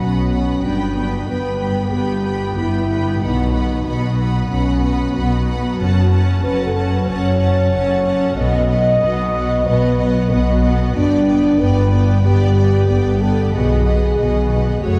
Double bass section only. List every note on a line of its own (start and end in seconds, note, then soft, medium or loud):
0.00 0.56 B1 soft
0.63 1.20 G1 medium
1.28 1.85 G1 soft
1.93 2.50 G1 medium
2.57 3.14 G1 soft
3.22 3.78 B1 medium
3.86 4.43 B1 medium
4.51 5.07 B1 medium
5.15 5.72 B1 medium
5.79 6.36 F#1 medium
6.44 7.01 F#1 medium
7.09 7.65 F#1 medium
7.73 8.30 F#1 medium
8.37 8.94 B1 medium
9.02 9.59 B1 medium
9.66 10.23 B1 medium
10.31 10.88 B1 medium
10.95 11.52 G1 medium
11.60 12.17 G1 medium
12.25 12.82 G1 medium
12.89 13.46 G1 medium
13.53 14.10 B1 medium
14.18 14.75 B1 medium
14.83 14.99 F#1 soft